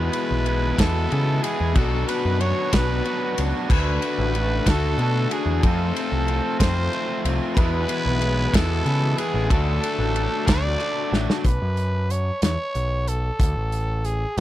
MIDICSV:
0, 0, Header, 1, 7, 480
1, 0, Start_track
1, 0, Tempo, 646552
1, 1304, Time_signature, 6, 3, 24, 8
1, 10692, End_track
2, 0, Start_track
2, 0, Title_t, "Glockenspiel"
2, 0, Program_c, 0, 9
2, 0, Note_on_c, 0, 83, 79
2, 563, Note_off_c, 0, 83, 0
2, 597, Note_on_c, 0, 81, 70
2, 1070, Note_off_c, 0, 81, 0
2, 1077, Note_on_c, 0, 80, 73
2, 1311, Note_off_c, 0, 80, 0
2, 1315, Note_on_c, 0, 81, 75
2, 1550, Note_off_c, 0, 81, 0
2, 1565, Note_on_c, 0, 83, 75
2, 1794, Note_on_c, 0, 85, 84
2, 1795, Note_off_c, 0, 83, 0
2, 2029, Note_off_c, 0, 85, 0
2, 2036, Note_on_c, 0, 83, 71
2, 2570, Note_off_c, 0, 83, 0
2, 2749, Note_on_c, 0, 83, 81
2, 3436, Note_off_c, 0, 83, 0
2, 3459, Note_on_c, 0, 81, 75
2, 3941, Note_off_c, 0, 81, 0
2, 3941, Note_on_c, 0, 80, 74
2, 4182, Note_off_c, 0, 80, 0
2, 4187, Note_on_c, 0, 81, 84
2, 4902, Note_on_c, 0, 84, 68
2, 4903, Note_off_c, 0, 81, 0
2, 5411, Note_off_c, 0, 84, 0
2, 5603, Note_on_c, 0, 83, 90
2, 6300, Note_off_c, 0, 83, 0
2, 6335, Note_on_c, 0, 81, 72
2, 6804, Note_on_c, 0, 80, 75
2, 6816, Note_off_c, 0, 81, 0
2, 7049, Note_on_c, 0, 81, 81
2, 7051, Note_off_c, 0, 80, 0
2, 7773, Note_off_c, 0, 81, 0
2, 7773, Note_on_c, 0, 86, 73
2, 8316, Note_off_c, 0, 86, 0
2, 10692, End_track
3, 0, Start_track
3, 0, Title_t, "Trumpet"
3, 0, Program_c, 1, 56
3, 0, Note_on_c, 1, 71, 90
3, 593, Note_on_c, 1, 69, 97
3, 604, Note_off_c, 1, 71, 0
3, 1060, Note_on_c, 1, 68, 82
3, 1071, Note_off_c, 1, 69, 0
3, 1302, Note_on_c, 1, 69, 82
3, 1313, Note_off_c, 1, 68, 0
3, 1544, Note_on_c, 1, 71, 92
3, 1555, Note_off_c, 1, 69, 0
3, 1786, Note_on_c, 1, 73, 90
3, 1797, Note_off_c, 1, 71, 0
3, 2029, Note_on_c, 1, 71, 98
3, 2040, Note_off_c, 1, 73, 0
3, 2567, Note_off_c, 1, 71, 0
3, 2750, Note_on_c, 1, 71, 90
3, 3487, Note_on_c, 1, 69, 105
3, 3498, Note_off_c, 1, 71, 0
3, 3952, Note_on_c, 1, 68, 86
3, 3963, Note_off_c, 1, 69, 0
3, 4193, Note_on_c, 1, 69, 84
3, 4204, Note_off_c, 1, 68, 0
3, 4892, Note_off_c, 1, 69, 0
3, 4897, Note_on_c, 1, 72, 96
3, 5408, Note_off_c, 1, 72, 0
3, 5621, Note_on_c, 1, 71, 102
3, 6349, Note_on_c, 1, 69, 109
3, 6360, Note_off_c, 1, 71, 0
3, 6813, Note_on_c, 1, 68, 92
3, 6825, Note_off_c, 1, 69, 0
3, 7055, Note_on_c, 1, 69, 92
3, 7066, Note_off_c, 1, 68, 0
3, 7772, Note_on_c, 1, 74, 109
3, 7783, Note_off_c, 1, 69, 0
3, 8315, Note_off_c, 1, 74, 0
3, 8505, Note_on_c, 1, 71, 78
3, 8990, Note_on_c, 1, 73, 80
3, 9001, Note_off_c, 1, 71, 0
3, 9221, Note_off_c, 1, 73, 0
3, 9226, Note_on_c, 1, 73, 92
3, 9710, Note_on_c, 1, 69, 82
3, 9721, Note_off_c, 1, 73, 0
3, 10432, Note_on_c, 1, 68, 83
3, 10443, Note_off_c, 1, 69, 0
3, 10683, Note_off_c, 1, 68, 0
3, 10692, End_track
4, 0, Start_track
4, 0, Title_t, "Overdriven electric guitar"
4, 0, Program_c, 2, 29
4, 85, Note_on_c, 2, 64, 72
4, 93, Note_on_c, 2, 59, 62
4, 108, Note_on_c, 2, 56, 63
4, 555, Note_off_c, 2, 64, 0
4, 567, Note_off_c, 2, 59, 0
4, 574, Note_off_c, 2, 56, 0
4, 1050, Note_on_c, 2, 64, 75
4, 1064, Note_on_c, 2, 59, 71
4, 1079, Note_on_c, 2, 56, 58
4, 1282, Note_off_c, 2, 64, 0
4, 1290, Note_off_c, 2, 59, 0
4, 1297, Note_off_c, 2, 56, 0
4, 1537, Note_on_c, 2, 66, 71
4, 1549, Note_on_c, 2, 62, 69
4, 1561, Note_on_c, 2, 59, 58
4, 1999, Note_off_c, 2, 66, 0
4, 2006, Note_off_c, 2, 62, 0
4, 2012, Note_off_c, 2, 59, 0
4, 2493, Note_on_c, 2, 66, 72
4, 2509, Note_on_c, 2, 62, 67
4, 2516, Note_on_c, 2, 59, 63
4, 2724, Note_off_c, 2, 66, 0
4, 2732, Note_off_c, 2, 62, 0
4, 2736, Note_off_c, 2, 59, 0
4, 2979, Note_on_c, 2, 66, 65
4, 2992, Note_on_c, 2, 62, 59
4, 3002, Note_on_c, 2, 57, 64
4, 3449, Note_off_c, 2, 66, 0
4, 3461, Note_off_c, 2, 62, 0
4, 3463, Note_off_c, 2, 57, 0
4, 3937, Note_on_c, 2, 66, 77
4, 3950, Note_on_c, 2, 62, 68
4, 3960, Note_on_c, 2, 57, 58
4, 4165, Note_off_c, 2, 66, 0
4, 4172, Note_off_c, 2, 62, 0
4, 4177, Note_off_c, 2, 57, 0
4, 4423, Note_on_c, 2, 65, 70
4, 4438, Note_on_c, 2, 60, 67
4, 4447, Note_on_c, 2, 57, 56
4, 4888, Note_off_c, 2, 65, 0
4, 4897, Note_off_c, 2, 60, 0
4, 4905, Note_off_c, 2, 57, 0
4, 5382, Note_on_c, 2, 65, 75
4, 5390, Note_on_c, 2, 60, 67
4, 5406, Note_on_c, 2, 57, 59
4, 5606, Note_off_c, 2, 65, 0
4, 5611, Note_off_c, 2, 60, 0
4, 5618, Note_off_c, 2, 57, 0
4, 5860, Note_on_c, 2, 64, 71
4, 5874, Note_on_c, 2, 59, 66
4, 5881, Note_on_c, 2, 56, 62
4, 6324, Note_off_c, 2, 64, 0
4, 6331, Note_off_c, 2, 59, 0
4, 6341, Note_off_c, 2, 56, 0
4, 6803, Note_on_c, 2, 64, 83
4, 6823, Note_on_c, 2, 59, 78
4, 6828, Note_on_c, 2, 56, 66
4, 7036, Note_off_c, 2, 64, 0
4, 7046, Note_off_c, 2, 59, 0
4, 7049, Note_off_c, 2, 56, 0
4, 7053, Note_on_c, 2, 54, 104
4, 7286, Note_on_c, 2, 62, 74
4, 7301, Note_on_c, 2, 57, 69
4, 7306, Note_off_c, 2, 54, 0
4, 7315, Note_on_c, 2, 54, 56
4, 7766, Note_off_c, 2, 62, 0
4, 7773, Note_off_c, 2, 57, 0
4, 7777, Note_off_c, 2, 54, 0
4, 7786, Note_on_c, 2, 54, 76
4, 8003, Note_off_c, 2, 54, 0
4, 8012, Note_on_c, 2, 54, 69
4, 8247, Note_on_c, 2, 62, 74
4, 8258, Note_off_c, 2, 54, 0
4, 8261, Note_on_c, 2, 57, 68
4, 8267, Note_on_c, 2, 54, 56
4, 8478, Note_off_c, 2, 62, 0
4, 8485, Note_off_c, 2, 57, 0
4, 8489, Note_off_c, 2, 54, 0
4, 10692, End_track
5, 0, Start_track
5, 0, Title_t, "Overdriven electric guitar"
5, 0, Program_c, 3, 29
5, 0, Note_on_c, 3, 40, 100
5, 0, Note_on_c, 3, 47, 101
5, 0, Note_on_c, 3, 52, 100
5, 0, Note_on_c, 3, 56, 106
5, 0, Note_on_c, 3, 59, 104
5, 0, Note_on_c, 3, 64, 112
5, 329, Note_off_c, 3, 52, 0
5, 334, Note_off_c, 3, 56, 0
5, 338, Note_on_c, 3, 52, 72
5, 343, Note_on_c, 3, 56, 80
5, 346, Note_off_c, 3, 59, 0
5, 346, Note_off_c, 3, 64, 0
5, 349, Note_on_c, 3, 59, 89
5, 355, Note_on_c, 3, 64, 90
5, 565, Note_off_c, 3, 64, 0
5, 568, Note_off_c, 3, 59, 0
5, 572, Note_off_c, 3, 56, 0
5, 574, Note_on_c, 3, 64, 82
5, 577, Note_off_c, 3, 40, 0
5, 577, Note_off_c, 3, 52, 0
5, 577, Note_on_c, 3, 59, 89
5, 578, Note_off_c, 3, 47, 0
5, 581, Note_on_c, 3, 56, 93
5, 586, Note_on_c, 3, 52, 73
5, 587, Note_on_c, 3, 47, 78
5, 589, Note_on_c, 3, 40, 76
5, 807, Note_off_c, 3, 52, 0
5, 811, Note_off_c, 3, 56, 0
5, 816, Note_on_c, 3, 52, 83
5, 820, Note_on_c, 3, 56, 83
5, 822, Note_off_c, 3, 59, 0
5, 825, Note_off_c, 3, 64, 0
5, 831, Note_on_c, 3, 59, 86
5, 834, Note_on_c, 3, 64, 91
5, 1066, Note_off_c, 3, 47, 0
5, 1067, Note_off_c, 3, 40, 0
5, 1286, Note_off_c, 3, 52, 0
5, 1288, Note_off_c, 3, 56, 0
5, 1293, Note_off_c, 3, 59, 0
5, 1295, Note_off_c, 3, 64, 0
5, 1297, Note_on_c, 3, 47, 93
5, 1303, Note_on_c, 3, 54, 92
5, 1306, Note_on_c, 3, 59, 97
5, 1311, Note_on_c, 3, 62, 92
5, 1313, Note_on_c, 3, 66, 105
5, 1776, Note_off_c, 3, 54, 0
5, 1779, Note_on_c, 3, 54, 74
5, 1780, Note_off_c, 3, 59, 0
5, 1786, Note_off_c, 3, 62, 0
5, 1789, Note_on_c, 3, 59, 75
5, 1789, Note_on_c, 3, 62, 90
5, 1796, Note_off_c, 3, 66, 0
5, 1799, Note_on_c, 3, 66, 90
5, 2004, Note_off_c, 3, 66, 0
5, 2006, Note_off_c, 3, 62, 0
5, 2010, Note_off_c, 3, 59, 0
5, 2013, Note_on_c, 3, 66, 89
5, 2015, Note_on_c, 3, 62, 86
5, 2017, Note_off_c, 3, 54, 0
5, 2018, Note_off_c, 3, 47, 0
5, 2019, Note_on_c, 3, 59, 76
5, 2026, Note_on_c, 3, 54, 81
5, 2027, Note_on_c, 3, 47, 75
5, 2252, Note_off_c, 3, 54, 0
5, 2253, Note_off_c, 3, 59, 0
5, 2261, Note_on_c, 3, 54, 71
5, 2262, Note_on_c, 3, 59, 73
5, 2263, Note_off_c, 3, 62, 0
5, 2267, Note_off_c, 3, 66, 0
5, 2272, Note_on_c, 3, 62, 74
5, 2276, Note_on_c, 3, 66, 89
5, 2506, Note_off_c, 3, 47, 0
5, 2728, Note_off_c, 3, 54, 0
5, 2729, Note_off_c, 3, 59, 0
5, 2734, Note_off_c, 3, 62, 0
5, 2734, Note_on_c, 3, 50, 89
5, 2736, Note_off_c, 3, 66, 0
5, 2740, Note_on_c, 3, 57, 89
5, 2749, Note_on_c, 3, 62, 109
5, 2753, Note_on_c, 3, 66, 97
5, 3207, Note_off_c, 3, 50, 0
5, 3216, Note_on_c, 3, 50, 77
5, 3217, Note_off_c, 3, 62, 0
5, 3222, Note_off_c, 3, 57, 0
5, 3223, Note_off_c, 3, 66, 0
5, 3225, Note_on_c, 3, 57, 79
5, 3226, Note_on_c, 3, 62, 86
5, 3232, Note_on_c, 3, 66, 77
5, 3448, Note_off_c, 3, 66, 0
5, 3456, Note_on_c, 3, 66, 99
5, 3457, Note_off_c, 3, 62, 0
5, 3463, Note_off_c, 3, 57, 0
5, 3464, Note_off_c, 3, 50, 0
5, 3466, Note_on_c, 3, 62, 91
5, 3472, Note_on_c, 3, 57, 82
5, 3473, Note_on_c, 3, 50, 82
5, 3689, Note_off_c, 3, 50, 0
5, 3694, Note_off_c, 3, 57, 0
5, 3698, Note_on_c, 3, 50, 78
5, 3700, Note_off_c, 3, 62, 0
5, 3703, Note_on_c, 3, 57, 76
5, 3709, Note_off_c, 3, 66, 0
5, 3709, Note_on_c, 3, 62, 72
5, 3718, Note_on_c, 3, 66, 90
5, 4166, Note_off_c, 3, 50, 0
5, 4168, Note_off_c, 3, 57, 0
5, 4171, Note_off_c, 3, 62, 0
5, 4175, Note_off_c, 3, 66, 0
5, 4183, Note_on_c, 3, 41, 99
5, 4188, Note_on_c, 3, 48, 102
5, 4189, Note_on_c, 3, 53, 90
5, 4189, Note_on_c, 3, 57, 98
5, 4194, Note_on_c, 3, 60, 104
5, 4198, Note_on_c, 3, 65, 100
5, 4649, Note_off_c, 3, 53, 0
5, 4656, Note_off_c, 3, 57, 0
5, 4658, Note_on_c, 3, 53, 77
5, 4659, Note_off_c, 3, 60, 0
5, 4665, Note_on_c, 3, 57, 84
5, 4668, Note_off_c, 3, 65, 0
5, 4668, Note_on_c, 3, 60, 83
5, 4677, Note_on_c, 3, 65, 93
5, 4883, Note_off_c, 3, 65, 0
5, 4889, Note_off_c, 3, 60, 0
5, 4892, Note_on_c, 3, 65, 96
5, 4894, Note_off_c, 3, 57, 0
5, 4896, Note_off_c, 3, 53, 0
5, 4898, Note_off_c, 3, 48, 0
5, 4898, Note_on_c, 3, 60, 87
5, 4899, Note_off_c, 3, 41, 0
5, 4903, Note_on_c, 3, 57, 91
5, 4905, Note_on_c, 3, 53, 89
5, 4907, Note_on_c, 3, 48, 78
5, 4908, Note_on_c, 3, 41, 82
5, 5124, Note_off_c, 3, 53, 0
5, 5133, Note_on_c, 3, 53, 76
5, 5134, Note_off_c, 3, 57, 0
5, 5139, Note_off_c, 3, 60, 0
5, 5142, Note_on_c, 3, 57, 85
5, 5143, Note_off_c, 3, 65, 0
5, 5148, Note_on_c, 3, 60, 86
5, 5152, Note_on_c, 3, 65, 81
5, 5383, Note_off_c, 3, 48, 0
5, 5384, Note_off_c, 3, 41, 0
5, 5601, Note_off_c, 3, 53, 0
5, 5606, Note_off_c, 3, 57, 0
5, 5608, Note_on_c, 3, 40, 95
5, 5608, Note_on_c, 3, 47, 89
5, 5609, Note_off_c, 3, 60, 0
5, 5611, Note_off_c, 3, 65, 0
5, 5615, Note_on_c, 3, 56, 105
5, 5617, Note_on_c, 3, 52, 99
5, 5624, Note_on_c, 3, 59, 106
5, 5627, Note_on_c, 3, 64, 107
5, 6071, Note_off_c, 3, 52, 0
5, 6080, Note_on_c, 3, 52, 81
5, 6081, Note_off_c, 3, 56, 0
5, 6085, Note_off_c, 3, 59, 0
5, 6090, Note_on_c, 3, 56, 86
5, 6091, Note_off_c, 3, 64, 0
5, 6094, Note_on_c, 3, 59, 81
5, 6100, Note_on_c, 3, 64, 78
5, 6316, Note_off_c, 3, 64, 0
5, 6323, Note_off_c, 3, 59, 0
5, 6325, Note_on_c, 3, 64, 95
5, 6327, Note_off_c, 3, 56, 0
5, 6331, Note_off_c, 3, 52, 0
5, 6332, Note_on_c, 3, 59, 98
5, 6333, Note_off_c, 3, 40, 0
5, 6333, Note_off_c, 3, 47, 0
5, 6336, Note_on_c, 3, 56, 86
5, 6340, Note_on_c, 3, 52, 79
5, 6342, Note_on_c, 3, 47, 85
5, 6345, Note_on_c, 3, 40, 77
5, 6556, Note_off_c, 3, 52, 0
5, 6561, Note_off_c, 3, 56, 0
5, 6565, Note_on_c, 3, 52, 82
5, 6568, Note_off_c, 3, 59, 0
5, 6569, Note_on_c, 3, 56, 80
5, 6573, Note_off_c, 3, 64, 0
5, 6577, Note_on_c, 3, 59, 90
5, 6582, Note_on_c, 3, 64, 90
5, 6820, Note_off_c, 3, 47, 0
5, 6821, Note_off_c, 3, 40, 0
5, 7037, Note_off_c, 3, 52, 0
5, 7039, Note_off_c, 3, 56, 0
5, 7043, Note_off_c, 3, 59, 0
5, 7045, Note_off_c, 3, 64, 0
5, 7046, Note_on_c, 3, 50, 87
5, 7053, Note_on_c, 3, 57, 109
5, 7058, Note_on_c, 3, 62, 106
5, 7062, Note_on_c, 3, 66, 120
5, 7517, Note_off_c, 3, 50, 0
5, 7526, Note_off_c, 3, 57, 0
5, 7526, Note_on_c, 3, 50, 84
5, 7530, Note_off_c, 3, 62, 0
5, 7533, Note_off_c, 3, 66, 0
5, 7535, Note_on_c, 3, 57, 80
5, 7539, Note_on_c, 3, 62, 69
5, 7542, Note_on_c, 3, 66, 79
5, 7760, Note_off_c, 3, 66, 0
5, 7768, Note_off_c, 3, 62, 0
5, 7768, Note_on_c, 3, 66, 88
5, 7772, Note_off_c, 3, 57, 0
5, 7777, Note_on_c, 3, 62, 91
5, 7780, Note_off_c, 3, 50, 0
5, 7781, Note_on_c, 3, 57, 76
5, 7789, Note_on_c, 3, 50, 76
5, 8003, Note_off_c, 3, 50, 0
5, 8009, Note_off_c, 3, 57, 0
5, 8011, Note_on_c, 3, 50, 80
5, 8015, Note_off_c, 3, 62, 0
5, 8018, Note_on_c, 3, 57, 75
5, 8022, Note_off_c, 3, 66, 0
5, 8024, Note_on_c, 3, 62, 81
5, 8031, Note_on_c, 3, 66, 77
5, 8481, Note_off_c, 3, 50, 0
5, 8484, Note_off_c, 3, 57, 0
5, 8487, Note_off_c, 3, 62, 0
5, 8491, Note_off_c, 3, 66, 0
5, 10692, End_track
6, 0, Start_track
6, 0, Title_t, "Picked electric bass"
6, 0, Program_c, 4, 34
6, 229, Note_on_c, 4, 35, 95
6, 531, Note_off_c, 4, 35, 0
6, 584, Note_on_c, 4, 40, 89
6, 787, Note_off_c, 4, 40, 0
6, 833, Note_on_c, 4, 49, 82
6, 1032, Note_off_c, 4, 49, 0
6, 1191, Note_on_c, 4, 40, 91
6, 1290, Note_off_c, 4, 40, 0
6, 1308, Note_on_c, 4, 35, 98
6, 1509, Note_off_c, 4, 35, 0
6, 1671, Note_on_c, 4, 42, 83
6, 1871, Note_off_c, 4, 42, 0
6, 2027, Note_on_c, 4, 35, 91
6, 2228, Note_off_c, 4, 35, 0
6, 2513, Note_on_c, 4, 37, 86
6, 2611, Note_off_c, 4, 37, 0
6, 2747, Note_on_c, 4, 38, 104
6, 2948, Note_off_c, 4, 38, 0
6, 3106, Note_on_c, 4, 33, 99
6, 3409, Note_off_c, 4, 33, 0
6, 3463, Note_on_c, 4, 38, 84
6, 3666, Note_off_c, 4, 38, 0
6, 3696, Note_on_c, 4, 47, 80
6, 3902, Note_off_c, 4, 47, 0
6, 4052, Note_on_c, 4, 40, 89
6, 4158, Note_off_c, 4, 40, 0
6, 4185, Note_on_c, 4, 41, 106
6, 4387, Note_off_c, 4, 41, 0
6, 4544, Note_on_c, 4, 36, 83
6, 4745, Note_off_c, 4, 36, 0
6, 4901, Note_on_c, 4, 41, 89
6, 5103, Note_off_c, 4, 41, 0
6, 5382, Note_on_c, 4, 36, 92
6, 5483, Note_off_c, 4, 36, 0
6, 5620, Note_on_c, 4, 40, 121
6, 5822, Note_off_c, 4, 40, 0
6, 5981, Note_on_c, 4, 35, 102
6, 6284, Note_off_c, 4, 35, 0
6, 6339, Note_on_c, 4, 40, 89
6, 6541, Note_off_c, 4, 40, 0
6, 6574, Note_on_c, 4, 49, 87
6, 6778, Note_off_c, 4, 49, 0
6, 6935, Note_on_c, 4, 33, 83
6, 7038, Note_off_c, 4, 33, 0
6, 7057, Note_on_c, 4, 38, 105
6, 7260, Note_off_c, 4, 38, 0
6, 7414, Note_on_c, 4, 33, 89
6, 7618, Note_off_c, 4, 33, 0
6, 7777, Note_on_c, 4, 38, 83
6, 7980, Note_off_c, 4, 38, 0
6, 8258, Note_on_c, 4, 33, 91
6, 8360, Note_off_c, 4, 33, 0
6, 8496, Note_on_c, 4, 35, 89
6, 8598, Note_off_c, 4, 35, 0
6, 8625, Note_on_c, 4, 42, 76
6, 9130, Note_off_c, 4, 42, 0
6, 9223, Note_on_c, 4, 40, 78
6, 9324, Note_off_c, 4, 40, 0
6, 9468, Note_on_c, 4, 35, 74
6, 9872, Note_off_c, 4, 35, 0
6, 9945, Note_on_c, 4, 38, 85
6, 10046, Note_off_c, 4, 38, 0
6, 10066, Note_on_c, 4, 33, 74
6, 10574, Note_off_c, 4, 33, 0
6, 10692, End_track
7, 0, Start_track
7, 0, Title_t, "Drums"
7, 98, Note_on_c, 9, 51, 72
7, 172, Note_off_c, 9, 51, 0
7, 340, Note_on_c, 9, 51, 68
7, 414, Note_off_c, 9, 51, 0
7, 582, Note_on_c, 9, 36, 76
7, 584, Note_on_c, 9, 51, 97
7, 593, Note_on_c, 9, 38, 114
7, 656, Note_off_c, 9, 36, 0
7, 659, Note_off_c, 9, 51, 0
7, 667, Note_off_c, 9, 38, 0
7, 828, Note_on_c, 9, 51, 74
7, 902, Note_off_c, 9, 51, 0
7, 1067, Note_on_c, 9, 51, 79
7, 1141, Note_off_c, 9, 51, 0
7, 1302, Note_on_c, 9, 51, 101
7, 1304, Note_on_c, 9, 36, 112
7, 1376, Note_off_c, 9, 51, 0
7, 1378, Note_off_c, 9, 36, 0
7, 1548, Note_on_c, 9, 51, 78
7, 1622, Note_off_c, 9, 51, 0
7, 1786, Note_on_c, 9, 51, 73
7, 1860, Note_off_c, 9, 51, 0
7, 2025, Note_on_c, 9, 51, 100
7, 2026, Note_on_c, 9, 36, 79
7, 2033, Note_on_c, 9, 38, 106
7, 2099, Note_off_c, 9, 51, 0
7, 2100, Note_off_c, 9, 36, 0
7, 2107, Note_off_c, 9, 38, 0
7, 2267, Note_on_c, 9, 51, 71
7, 2341, Note_off_c, 9, 51, 0
7, 2507, Note_on_c, 9, 51, 77
7, 2582, Note_off_c, 9, 51, 0
7, 2746, Note_on_c, 9, 36, 115
7, 2750, Note_on_c, 9, 49, 95
7, 2820, Note_off_c, 9, 36, 0
7, 2824, Note_off_c, 9, 49, 0
7, 2986, Note_on_c, 9, 51, 66
7, 3060, Note_off_c, 9, 51, 0
7, 3227, Note_on_c, 9, 51, 65
7, 3302, Note_off_c, 9, 51, 0
7, 3463, Note_on_c, 9, 36, 76
7, 3463, Note_on_c, 9, 51, 93
7, 3472, Note_on_c, 9, 38, 107
7, 3537, Note_off_c, 9, 36, 0
7, 3538, Note_off_c, 9, 51, 0
7, 3546, Note_off_c, 9, 38, 0
7, 3702, Note_on_c, 9, 51, 71
7, 3777, Note_off_c, 9, 51, 0
7, 3943, Note_on_c, 9, 51, 66
7, 4017, Note_off_c, 9, 51, 0
7, 4182, Note_on_c, 9, 36, 110
7, 4182, Note_on_c, 9, 51, 96
7, 4256, Note_off_c, 9, 36, 0
7, 4256, Note_off_c, 9, 51, 0
7, 4427, Note_on_c, 9, 51, 73
7, 4502, Note_off_c, 9, 51, 0
7, 4662, Note_on_c, 9, 51, 61
7, 4736, Note_off_c, 9, 51, 0
7, 4901, Note_on_c, 9, 36, 87
7, 4902, Note_on_c, 9, 51, 103
7, 4910, Note_on_c, 9, 38, 113
7, 4975, Note_off_c, 9, 36, 0
7, 4976, Note_off_c, 9, 51, 0
7, 4984, Note_off_c, 9, 38, 0
7, 5144, Note_on_c, 9, 51, 67
7, 5219, Note_off_c, 9, 51, 0
7, 5384, Note_on_c, 9, 51, 76
7, 5459, Note_off_c, 9, 51, 0
7, 5618, Note_on_c, 9, 36, 109
7, 5621, Note_on_c, 9, 51, 100
7, 5692, Note_off_c, 9, 36, 0
7, 5695, Note_off_c, 9, 51, 0
7, 5857, Note_on_c, 9, 51, 84
7, 5931, Note_off_c, 9, 51, 0
7, 6098, Note_on_c, 9, 51, 71
7, 6173, Note_off_c, 9, 51, 0
7, 6337, Note_on_c, 9, 36, 88
7, 6341, Note_on_c, 9, 51, 101
7, 6350, Note_on_c, 9, 38, 118
7, 6411, Note_off_c, 9, 36, 0
7, 6416, Note_off_c, 9, 51, 0
7, 6424, Note_off_c, 9, 38, 0
7, 6577, Note_on_c, 9, 51, 72
7, 6651, Note_off_c, 9, 51, 0
7, 6817, Note_on_c, 9, 51, 73
7, 6891, Note_off_c, 9, 51, 0
7, 7056, Note_on_c, 9, 36, 111
7, 7057, Note_on_c, 9, 51, 97
7, 7130, Note_off_c, 9, 36, 0
7, 7131, Note_off_c, 9, 51, 0
7, 7301, Note_on_c, 9, 51, 73
7, 7375, Note_off_c, 9, 51, 0
7, 7540, Note_on_c, 9, 51, 66
7, 7614, Note_off_c, 9, 51, 0
7, 7777, Note_on_c, 9, 36, 79
7, 7779, Note_on_c, 9, 51, 97
7, 7787, Note_on_c, 9, 38, 121
7, 7851, Note_off_c, 9, 36, 0
7, 7854, Note_off_c, 9, 51, 0
7, 7862, Note_off_c, 9, 38, 0
7, 8020, Note_on_c, 9, 51, 68
7, 8094, Note_off_c, 9, 51, 0
7, 8266, Note_on_c, 9, 38, 71
7, 8340, Note_off_c, 9, 38, 0
7, 8388, Note_on_c, 9, 38, 91
7, 8462, Note_off_c, 9, 38, 0
7, 8496, Note_on_c, 9, 42, 80
7, 8498, Note_on_c, 9, 36, 88
7, 8570, Note_off_c, 9, 42, 0
7, 8572, Note_off_c, 9, 36, 0
7, 8738, Note_on_c, 9, 42, 64
7, 8813, Note_off_c, 9, 42, 0
7, 8985, Note_on_c, 9, 42, 65
7, 9059, Note_off_c, 9, 42, 0
7, 9220, Note_on_c, 9, 42, 91
7, 9229, Note_on_c, 9, 38, 97
7, 9295, Note_off_c, 9, 42, 0
7, 9303, Note_off_c, 9, 38, 0
7, 9465, Note_on_c, 9, 42, 64
7, 9539, Note_off_c, 9, 42, 0
7, 9707, Note_on_c, 9, 42, 64
7, 9781, Note_off_c, 9, 42, 0
7, 9945, Note_on_c, 9, 36, 97
7, 9947, Note_on_c, 9, 42, 92
7, 10019, Note_off_c, 9, 36, 0
7, 10021, Note_off_c, 9, 42, 0
7, 10188, Note_on_c, 9, 42, 68
7, 10262, Note_off_c, 9, 42, 0
7, 10428, Note_on_c, 9, 42, 59
7, 10502, Note_off_c, 9, 42, 0
7, 10692, End_track
0, 0, End_of_file